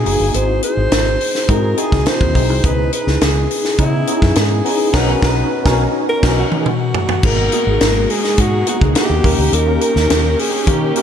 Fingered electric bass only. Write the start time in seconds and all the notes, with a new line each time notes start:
0.05 F#1
0.20 G1
0.34 G#1
0.77 G#1
0.91 G#1
1.49 G#2
1.92 C#2
2.21 D#2
2.35 B1
2.50 C2
2.64 C#2
3.07 C#2
3.22 C#2
3.79 C#3
4.22 F#2
4.36 G#2
4.94 B1
5.23 B1
5.65 B1
6.23 B1
7.23 G#1
7.67 G#1
7.81 G#1
8.38 G#2
8.81 C#2
9.10 D#2
9.24 D#2
9.38 D2
9.53 D#2
9.96 D#2
10.10 D#2
10.67 D#3